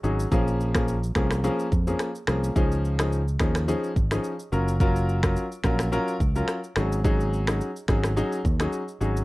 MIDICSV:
0, 0, Header, 1, 4, 480
1, 0, Start_track
1, 0, Tempo, 560748
1, 270, Time_signature, 4, 2, 24, 8
1, 7912, End_track
2, 0, Start_track
2, 0, Title_t, "Grand piano"
2, 0, Program_c, 0, 0
2, 28, Note_on_c, 0, 54, 75
2, 30, Note_on_c, 0, 61, 71
2, 31, Note_on_c, 0, 63, 69
2, 33, Note_on_c, 0, 68, 87
2, 215, Note_off_c, 0, 54, 0
2, 216, Note_off_c, 0, 61, 0
2, 217, Note_off_c, 0, 63, 0
2, 218, Note_off_c, 0, 68, 0
2, 268, Note_on_c, 0, 53, 96
2, 270, Note_on_c, 0, 58, 80
2, 272, Note_on_c, 0, 61, 85
2, 274, Note_on_c, 0, 68, 96
2, 610, Note_off_c, 0, 53, 0
2, 611, Note_off_c, 0, 58, 0
2, 612, Note_off_c, 0, 61, 0
2, 613, Note_off_c, 0, 68, 0
2, 640, Note_on_c, 0, 53, 75
2, 642, Note_on_c, 0, 58, 68
2, 644, Note_on_c, 0, 61, 66
2, 645, Note_on_c, 0, 68, 79
2, 815, Note_off_c, 0, 53, 0
2, 816, Note_off_c, 0, 58, 0
2, 817, Note_off_c, 0, 61, 0
2, 818, Note_off_c, 0, 68, 0
2, 988, Note_on_c, 0, 53, 75
2, 990, Note_on_c, 0, 58, 70
2, 992, Note_on_c, 0, 61, 68
2, 993, Note_on_c, 0, 68, 86
2, 1175, Note_off_c, 0, 53, 0
2, 1176, Note_off_c, 0, 58, 0
2, 1177, Note_off_c, 0, 61, 0
2, 1178, Note_off_c, 0, 68, 0
2, 1229, Note_on_c, 0, 53, 95
2, 1230, Note_on_c, 0, 58, 84
2, 1232, Note_on_c, 0, 61, 89
2, 1234, Note_on_c, 0, 68, 102
2, 1416, Note_off_c, 0, 53, 0
2, 1417, Note_off_c, 0, 58, 0
2, 1417, Note_off_c, 0, 61, 0
2, 1418, Note_off_c, 0, 68, 0
2, 1599, Note_on_c, 0, 53, 73
2, 1601, Note_on_c, 0, 58, 67
2, 1603, Note_on_c, 0, 61, 69
2, 1605, Note_on_c, 0, 68, 80
2, 1775, Note_off_c, 0, 53, 0
2, 1776, Note_off_c, 0, 58, 0
2, 1777, Note_off_c, 0, 61, 0
2, 1778, Note_off_c, 0, 68, 0
2, 1948, Note_on_c, 0, 53, 74
2, 1950, Note_on_c, 0, 58, 68
2, 1951, Note_on_c, 0, 61, 69
2, 1953, Note_on_c, 0, 68, 85
2, 2135, Note_off_c, 0, 53, 0
2, 2136, Note_off_c, 0, 58, 0
2, 2137, Note_off_c, 0, 61, 0
2, 2138, Note_off_c, 0, 68, 0
2, 2186, Note_on_c, 0, 53, 89
2, 2188, Note_on_c, 0, 61, 84
2, 2189, Note_on_c, 0, 63, 82
2, 2191, Note_on_c, 0, 68, 95
2, 2529, Note_off_c, 0, 53, 0
2, 2530, Note_off_c, 0, 61, 0
2, 2530, Note_off_c, 0, 63, 0
2, 2531, Note_off_c, 0, 68, 0
2, 2559, Note_on_c, 0, 53, 69
2, 2561, Note_on_c, 0, 61, 67
2, 2563, Note_on_c, 0, 63, 68
2, 2564, Note_on_c, 0, 68, 79
2, 2735, Note_off_c, 0, 53, 0
2, 2736, Note_off_c, 0, 61, 0
2, 2737, Note_off_c, 0, 63, 0
2, 2738, Note_off_c, 0, 68, 0
2, 2907, Note_on_c, 0, 53, 75
2, 2909, Note_on_c, 0, 61, 70
2, 2911, Note_on_c, 0, 63, 68
2, 2913, Note_on_c, 0, 68, 78
2, 3095, Note_off_c, 0, 53, 0
2, 3096, Note_off_c, 0, 61, 0
2, 3097, Note_off_c, 0, 63, 0
2, 3098, Note_off_c, 0, 68, 0
2, 3147, Note_on_c, 0, 53, 91
2, 3149, Note_on_c, 0, 61, 85
2, 3151, Note_on_c, 0, 63, 82
2, 3153, Note_on_c, 0, 68, 108
2, 3335, Note_off_c, 0, 53, 0
2, 3336, Note_off_c, 0, 61, 0
2, 3337, Note_off_c, 0, 63, 0
2, 3338, Note_off_c, 0, 68, 0
2, 3520, Note_on_c, 0, 53, 75
2, 3521, Note_on_c, 0, 61, 66
2, 3523, Note_on_c, 0, 63, 68
2, 3524, Note_on_c, 0, 68, 82
2, 3695, Note_off_c, 0, 53, 0
2, 3696, Note_off_c, 0, 61, 0
2, 3697, Note_off_c, 0, 63, 0
2, 3698, Note_off_c, 0, 68, 0
2, 3868, Note_on_c, 0, 54, 77
2, 3869, Note_on_c, 0, 61, 70
2, 3871, Note_on_c, 0, 65, 69
2, 3873, Note_on_c, 0, 70, 86
2, 4055, Note_off_c, 0, 54, 0
2, 4056, Note_off_c, 0, 61, 0
2, 4057, Note_off_c, 0, 65, 0
2, 4058, Note_off_c, 0, 70, 0
2, 4109, Note_on_c, 0, 54, 93
2, 4111, Note_on_c, 0, 61, 81
2, 4113, Note_on_c, 0, 65, 84
2, 4115, Note_on_c, 0, 70, 97
2, 4450, Note_off_c, 0, 54, 0
2, 4451, Note_off_c, 0, 61, 0
2, 4452, Note_off_c, 0, 65, 0
2, 4453, Note_off_c, 0, 70, 0
2, 4480, Note_on_c, 0, 54, 75
2, 4482, Note_on_c, 0, 61, 66
2, 4484, Note_on_c, 0, 65, 68
2, 4485, Note_on_c, 0, 70, 80
2, 4655, Note_off_c, 0, 54, 0
2, 4656, Note_off_c, 0, 61, 0
2, 4657, Note_off_c, 0, 65, 0
2, 4658, Note_off_c, 0, 70, 0
2, 4828, Note_on_c, 0, 54, 75
2, 4830, Note_on_c, 0, 61, 72
2, 4831, Note_on_c, 0, 65, 71
2, 4833, Note_on_c, 0, 70, 85
2, 5015, Note_off_c, 0, 54, 0
2, 5016, Note_off_c, 0, 61, 0
2, 5017, Note_off_c, 0, 65, 0
2, 5018, Note_off_c, 0, 70, 0
2, 5068, Note_on_c, 0, 54, 92
2, 5070, Note_on_c, 0, 61, 91
2, 5071, Note_on_c, 0, 65, 87
2, 5073, Note_on_c, 0, 70, 105
2, 5255, Note_off_c, 0, 54, 0
2, 5256, Note_off_c, 0, 61, 0
2, 5257, Note_off_c, 0, 65, 0
2, 5258, Note_off_c, 0, 70, 0
2, 5440, Note_on_c, 0, 54, 73
2, 5442, Note_on_c, 0, 61, 68
2, 5444, Note_on_c, 0, 65, 68
2, 5446, Note_on_c, 0, 70, 84
2, 5616, Note_off_c, 0, 54, 0
2, 5617, Note_off_c, 0, 61, 0
2, 5617, Note_off_c, 0, 65, 0
2, 5618, Note_off_c, 0, 70, 0
2, 5788, Note_on_c, 0, 54, 78
2, 5790, Note_on_c, 0, 61, 69
2, 5791, Note_on_c, 0, 63, 69
2, 5793, Note_on_c, 0, 68, 86
2, 5975, Note_off_c, 0, 54, 0
2, 5977, Note_off_c, 0, 61, 0
2, 5977, Note_off_c, 0, 63, 0
2, 5978, Note_off_c, 0, 68, 0
2, 6028, Note_on_c, 0, 54, 92
2, 6030, Note_on_c, 0, 61, 84
2, 6032, Note_on_c, 0, 63, 89
2, 6033, Note_on_c, 0, 68, 106
2, 6370, Note_off_c, 0, 54, 0
2, 6371, Note_off_c, 0, 61, 0
2, 6372, Note_off_c, 0, 63, 0
2, 6372, Note_off_c, 0, 68, 0
2, 6400, Note_on_c, 0, 54, 72
2, 6402, Note_on_c, 0, 61, 68
2, 6404, Note_on_c, 0, 63, 68
2, 6405, Note_on_c, 0, 68, 80
2, 6576, Note_off_c, 0, 54, 0
2, 6576, Note_off_c, 0, 61, 0
2, 6578, Note_off_c, 0, 63, 0
2, 6578, Note_off_c, 0, 68, 0
2, 6748, Note_on_c, 0, 54, 77
2, 6750, Note_on_c, 0, 61, 69
2, 6751, Note_on_c, 0, 63, 66
2, 6753, Note_on_c, 0, 68, 85
2, 6936, Note_off_c, 0, 54, 0
2, 6936, Note_off_c, 0, 61, 0
2, 6937, Note_off_c, 0, 63, 0
2, 6938, Note_off_c, 0, 68, 0
2, 6988, Note_on_c, 0, 54, 93
2, 6990, Note_on_c, 0, 61, 86
2, 6992, Note_on_c, 0, 63, 86
2, 6993, Note_on_c, 0, 68, 106
2, 7175, Note_off_c, 0, 54, 0
2, 7176, Note_off_c, 0, 61, 0
2, 7177, Note_off_c, 0, 63, 0
2, 7178, Note_off_c, 0, 68, 0
2, 7362, Note_on_c, 0, 54, 75
2, 7364, Note_on_c, 0, 61, 67
2, 7365, Note_on_c, 0, 63, 70
2, 7367, Note_on_c, 0, 68, 85
2, 7536, Note_off_c, 0, 54, 0
2, 7537, Note_off_c, 0, 61, 0
2, 7538, Note_off_c, 0, 63, 0
2, 7539, Note_off_c, 0, 68, 0
2, 7708, Note_on_c, 0, 54, 77
2, 7709, Note_on_c, 0, 61, 70
2, 7711, Note_on_c, 0, 63, 73
2, 7713, Note_on_c, 0, 68, 84
2, 7895, Note_off_c, 0, 54, 0
2, 7896, Note_off_c, 0, 61, 0
2, 7897, Note_off_c, 0, 63, 0
2, 7898, Note_off_c, 0, 68, 0
2, 7912, End_track
3, 0, Start_track
3, 0, Title_t, "Fingered electric bass"
3, 0, Program_c, 1, 33
3, 31, Note_on_c, 1, 32, 87
3, 209, Note_off_c, 1, 32, 0
3, 271, Note_on_c, 1, 34, 103
3, 957, Note_off_c, 1, 34, 0
3, 990, Note_on_c, 1, 36, 90
3, 1267, Note_off_c, 1, 36, 0
3, 1471, Note_on_c, 1, 41, 90
3, 1650, Note_off_c, 1, 41, 0
3, 1951, Note_on_c, 1, 36, 83
3, 2130, Note_off_c, 1, 36, 0
3, 2191, Note_on_c, 1, 37, 94
3, 2877, Note_off_c, 1, 37, 0
3, 2910, Note_on_c, 1, 39, 83
3, 3187, Note_off_c, 1, 39, 0
3, 3391, Note_on_c, 1, 32, 82
3, 3569, Note_off_c, 1, 32, 0
3, 3872, Note_on_c, 1, 30, 87
3, 4585, Note_off_c, 1, 30, 0
3, 4830, Note_on_c, 1, 34, 94
3, 5107, Note_off_c, 1, 34, 0
3, 5311, Note_on_c, 1, 37, 89
3, 5490, Note_off_c, 1, 37, 0
3, 5790, Note_on_c, 1, 32, 90
3, 6505, Note_off_c, 1, 32, 0
3, 6750, Note_on_c, 1, 32, 91
3, 7027, Note_off_c, 1, 32, 0
3, 7231, Note_on_c, 1, 39, 92
3, 7409, Note_off_c, 1, 39, 0
3, 7710, Note_on_c, 1, 32, 83
3, 7889, Note_off_c, 1, 32, 0
3, 7912, End_track
4, 0, Start_track
4, 0, Title_t, "Drums"
4, 33, Note_on_c, 9, 82, 54
4, 119, Note_off_c, 9, 82, 0
4, 166, Note_on_c, 9, 82, 86
4, 252, Note_off_c, 9, 82, 0
4, 271, Note_on_c, 9, 36, 111
4, 271, Note_on_c, 9, 82, 74
4, 356, Note_off_c, 9, 82, 0
4, 357, Note_off_c, 9, 36, 0
4, 406, Note_on_c, 9, 82, 51
4, 492, Note_off_c, 9, 82, 0
4, 517, Note_on_c, 9, 82, 50
4, 603, Note_off_c, 9, 82, 0
4, 638, Note_on_c, 9, 26, 82
4, 641, Note_on_c, 9, 36, 86
4, 643, Note_on_c, 9, 37, 96
4, 643, Note_on_c, 9, 82, 82
4, 724, Note_off_c, 9, 26, 0
4, 727, Note_off_c, 9, 36, 0
4, 728, Note_off_c, 9, 82, 0
4, 729, Note_off_c, 9, 37, 0
4, 753, Note_on_c, 9, 82, 73
4, 839, Note_off_c, 9, 82, 0
4, 886, Note_on_c, 9, 82, 54
4, 971, Note_off_c, 9, 82, 0
4, 986, Note_on_c, 9, 26, 74
4, 990, Note_on_c, 9, 36, 83
4, 991, Note_on_c, 9, 37, 90
4, 991, Note_on_c, 9, 82, 46
4, 1071, Note_off_c, 9, 26, 0
4, 1076, Note_off_c, 9, 36, 0
4, 1076, Note_off_c, 9, 37, 0
4, 1076, Note_off_c, 9, 82, 0
4, 1118, Note_on_c, 9, 26, 76
4, 1123, Note_on_c, 9, 37, 95
4, 1126, Note_on_c, 9, 82, 78
4, 1203, Note_off_c, 9, 26, 0
4, 1208, Note_off_c, 9, 37, 0
4, 1211, Note_off_c, 9, 82, 0
4, 1233, Note_on_c, 9, 82, 74
4, 1318, Note_off_c, 9, 82, 0
4, 1364, Note_on_c, 9, 82, 54
4, 1450, Note_off_c, 9, 82, 0
4, 1471, Note_on_c, 9, 36, 95
4, 1473, Note_on_c, 9, 82, 53
4, 1557, Note_off_c, 9, 36, 0
4, 1559, Note_off_c, 9, 82, 0
4, 1602, Note_on_c, 9, 82, 83
4, 1687, Note_off_c, 9, 82, 0
4, 1706, Note_on_c, 9, 26, 65
4, 1708, Note_on_c, 9, 82, 62
4, 1711, Note_on_c, 9, 37, 79
4, 1791, Note_off_c, 9, 26, 0
4, 1794, Note_off_c, 9, 82, 0
4, 1796, Note_off_c, 9, 37, 0
4, 1842, Note_on_c, 9, 82, 54
4, 1927, Note_off_c, 9, 82, 0
4, 1945, Note_on_c, 9, 26, 87
4, 1950, Note_on_c, 9, 37, 110
4, 1953, Note_on_c, 9, 82, 50
4, 2030, Note_off_c, 9, 26, 0
4, 2035, Note_off_c, 9, 37, 0
4, 2038, Note_off_c, 9, 82, 0
4, 2086, Note_on_c, 9, 82, 92
4, 2171, Note_off_c, 9, 82, 0
4, 2190, Note_on_c, 9, 82, 72
4, 2191, Note_on_c, 9, 36, 109
4, 2276, Note_off_c, 9, 36, 0
4, 2276, Note_off_c, 9, 82, 0
4, 2325, Note_on_c, 9, 82, 53
4, 2411, Note_off_c, 9, 82, 0
4, 2436, Note_on_c, 9, 82, 53
4, 2522, Note_off_c, 9, 82, 0
4, 2558, Note_on_c, 9, 26, 82
4, 2562, Note_on_c, 9, 82, 84
4, 2563, Note_on_c, 9, 37, 102
4, 2643, Note_off_c, 9, 26, 0
4, 2648, Note_off_c, 9, 82, 0
4, 2649, Note_off_c, 9, 37, 0
4, 2673, Note_on_c, 9, 82, 77
4, 2758, Note_off_c, 9, 82, 0
4, 2806, Note_on_c, 9, 82, 56
4, 2891, Note_off_c, 9, 82, 0
4, 2905, Note_on_c, 9, 26, 76
4, 2910, Note_on_c, 9, 36, 90
4, 2910, Note_on_c, 9, 37, 91
4, 2910, Note_on_c, 9, 82, 46
4, 2991, Note_off_c, 9, 26, 0
4, 2995, Note_off_c, 9, 36, 0
4, 2996, Note_off_c, 9, 37, 0
4, 2996, Note_off_c, 9, 82, 0
4, 3038, Note_on_c, 9, 26, 73
4, 3043, Note_on_c, 9, 37, 91
4, 3046, Note_on_c, 9, 82, 80
4, 3123, Note_off_c, 9, 26, 0
4, 3129, Note_off_c, 9, 37, 0
4, 3132, Note_off_c, 9, 82, 0
4, 3153, Note_on_c, 9, 82, 77
4, 3238, Note_off_c, 9, 82, 0
4, 3283, Note_on_c, 9, 82, 54
4, 3369, Note_off_c, 9, 82, 0
4, 3391, Note_on_c, 9, 36, 97
4, 3393, Note_on_c, 9, 82, 52
4, 3477, Note_off_c, 9, 36, 0
4, 3479, Note_off_c, 9, 82, 0
4, 3517, Note_on_c, 9, 26, 79
4, 3521, Note_on_c, 9, 82, 84
4, 3523, Note_on_c, 9, 37, 91
4, 3603, Note_off_c, 9, 26, 0
4, 3606, Note_off_c, 9, 82, 0
4, 3608, Note_off_c, 9, 37, 0
4, 3628, Note_on_c, 9, 82, 63
4, 3713, Note_off_c, 9, 82, 0
4, 3761, Note_on_c, 9, 82, 57
4, 3847, Note_off_c, 9, 82, 0
4, 3872, Note_on_c, 9, 82, 54
4, 3958, Note_off_c, 9, 82, 0
4, 4005, Note_on_c, 9, 82, 90
4, 4091, Note_off_c, 9, 82, 0
4, 4110, Note_on_c, 9, 82, 71
4, 4111, Note_on_c, 9, 36, 113
4, 4196, Note_off_c, 9, 36, 0
4, 4196, Note_off_c, 9, 82, 0
4, 4245, Note_on_c, 9, 82, 52
4, 4331, Note_off_c, 9, 82, 0
4, 4356, Note_on_c, 9, 82, 55
4, 4442, Note_off_c, 9, 82, 0
4, 4477, Note_on_c, 9, 26, 78
4, 4481, Note_on_c, 9, 36, 86
4, 4482, Note_on_c, 9, 37, 101
4, 4482, Note_on_c, 9, 82, 85
4, 4563, Note_off_c, 9, 26, 0
4, 4567, Note_off_c, 9, 36, 0
4, 4567, Note_off_c, 9, 82, 0
4, 4568, Note_off_c, 9, 37, 0
4, 4592, Note_on_c, 9, 82, 73
4, 4678, Note_off_c, 9, 82, 0
4, 4725, Note_on_c, 9, 82, 53
4, 4811, Note_off_c, 9, 82, 0
4, 4825, Note_on_c, 9, 26, 73
4, 4830, Note_on_c, 9, 36, 86
4, 4830, Note_on_c, 9, 37, 87
4, 4830, Note_on_c, 9, 82, 47
4, 4911, Note_off_c, 9, 26, 0
4, 4915, Note_off_c, 9, 36, 0
4, 4916, Note_off_c, 9, 37, 0
4, 4916, Note_off_c, 9, 82, 0
4, 4957, Note_on_c, 9, 26, 72
4, 4962, Note_on_c, 9, 37, 87
4, 4966, Note_on_c, 9, 82, 80
4, 5043, Note_off_c, 9, 26, 0
4, 5048, Note_off_c, 9, 37, 0
4, 5051, Note_off_c, 9, 82, 0
4, 5073, Note_on_c, 9, 82, 80
4, 5158, Note_off_c, 9, 82, 0
4, 5204, Note_on_c, 9, 82, 55
4, 5290, Note_off_c, 9, 82, 0
4, 5311, Note_on_c, 9, 36, 90
4, 5314, Note_on_c, 9, 82, 51
4, 5397, Note_off_c, 9, 36, 0
4, 5400, Note_off_c, 9, 82, 0
4, 5442, Note_on_c, 9, 82, 84
4, 5527, Note_off_c, 9, 82, 0
4, 5545, Note_on_c, 9, 26, 62
4, 5548, Note_on_c, 9, 82, 65
4, 5550, Note_on_c, 9, 37, 82
4, 5631, Note_off_c, 9, 26, 0
4, 5633, Note_off_c, 9, 82, 0
4, 5636, Note_off_c, 9, 37, 0
4, 5681, Note_on_c, 9, 82, 55
4, 5767, Note_off_c, 9, 82, 0
4, 5784, Note_on_c, 9, 26, 86
4, 5789, Note_on_c, 9, 37, 107
4, 5792, Note_on_c, 9, 82, 52
4, 5870, Note_off_c, 9, 26, 0
4, 5875, Note_off_c, 9, 37, 0
4, 5877, Note_off_c, 9, 82, 0
4, 5926, Note_on_c, 9, 82, 90
4, 6011, Note_off_c, 9, 82, 0
4, 6031, Note_on_c, 9, 36, 110
4, 6031, Note_on_c, 9, 82, 69
4, 6116, Note_off_c, 9, 36, 0
4, 6116, Note_off_c, 9, 82, 0
4, 6166, Note_on_c, 9, 82, 53
4, 6251, Note_off_c, 9, 82, 0
4, 6277, Note_on_c, 9, 82, 55
4, 6363, Note_off_c, 9, 82, 0
4, 6398, Note_on_c, 9, 26, 84
4, 6402, Note_on_c, 9, 82, 85
4, 6403, Note_on_c, 9, 37, 100
4, 6483, Note_off_c, 9, 26, 0
4, 6488, Note_off_c, 9, 82, 0
4, 6489, Note_off_c, 9, 37, 0
4, 6512, Note_on_c, 9, 82, 76
4, 6598, Note_off_c, 9, 82, 0
4, 6645, Note_on_c, 9, 82, 56
4, 6731, Note_off_c, 9, 82, 0
4, 6746, Note_on_c, 9, 26, 73
4, 6750, Note_on_c, 9, 36, 89
4, 6751, Note_on_c, 9, 37, 89
4, 6751, Note_on_c, 9, 82, 50
4, 6832, Note_off_c, 9, 26, 0
4, 6836, Note_off_c, 9, 36, 0
4, 6837, Note_off_c, 9, 37, 0
4, 6837, Note_off_c, 9, 82, 0
4, 6878, Note_on_c, 9, 26, 73
4, 6883, Note_on_c, 9, 37, 93
4, 6886, Note_on_c, 9, 82, 80
4, 6963, Note_off_c, 9, 26, 0
4, 6968, Note_off_c, 9, 37, 0
4, 6972, Note_off_c, 9, 82, 0
4, 6993, Note_on_c, 9, 82, 76
4, 7079, Note_off_c, 9, 82, 0
4, 7124, Note_on_c, 9, 82, 53
4, 7209, Note_off_c, 9, 82, 0
4, 7231, Note_on_c, 9, 36, 89
4, 7234, Note_on_c, 9, 82, 51
4, 7317, Note_off_c, 9, 36, 0
4, 7320, Note_off_c, 9, 82, 0
4, 7358, Note_on_c, 9, 26, 76
4, 7362, Note_on_c, 9, 82, 85
4, 7363, Note_on_c, 9, 37, 95
4, 7444, Note_off_c, 9, 26, 0
4, 7447, Note_off_c, 9, 82, 0
4, 7449, Note_off_c, 9, 37, 0
4, 7469, Note_on_c, 9, 82, 63
4, 7554, Note_off_c, 9, 82, 0
4, 7601, Note_on_c, 9, 82, 52
4, 7687, Note_off_c, 9, 82, 0
4, 7713, Note_on_c, 9, 82, 52
4, 7799, Note_off_c, 9, 82, 0
4, 7846, Note_on_c, 9, 82, 88
4, 7912, Note_off_c, 9, 82, 0
4, 7912, End_track
0, 0, End_of_file